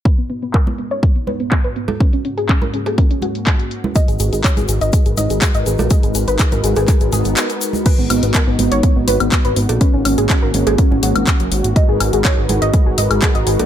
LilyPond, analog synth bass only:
\new Staff \with { instrumentName = "Analog synth bass" } { \clef bass \time 4/4 \key gis \minor \tempo 4 = 123 r1 | r1 | r16 gis,,16 gis,,16 gis,,16 r16 gis,,16 gis,,16 gis,,16 r16 gis,,16 gis,,16 gis,,16 r16 gis,,16 gis,,16 ais,,16 | r16 gis,,16 gis,,16 gis,,16 r16 gis,,16 gis,,16 gis,,16 r16 gis,,16 gis,,16 gis,,16 r4 |
r16 gis,,16 gis,,16 gis,,16 r16 gis,,16 gis,,16 gis,,16 r16 gis,,16 gis,,16 gis,,16 r16 gis,,16 gis,,16 ais,,16 | r16 gis,,16 gis,,16 gis,,16 r16 gis,,16 gis,,16 gis,,16 r16 gis,,16 gis,,16 gis,,16 r16 fis,,16 gis,,16 gis,,16 | r16 gis,,16 gis,,16 gis,,16 r16 gis,,16 gis,,16 gis,,16 r16 gis,,16 gis,,16 gis,,16 r16 gis,,16 gis,,16 ais,,16 | }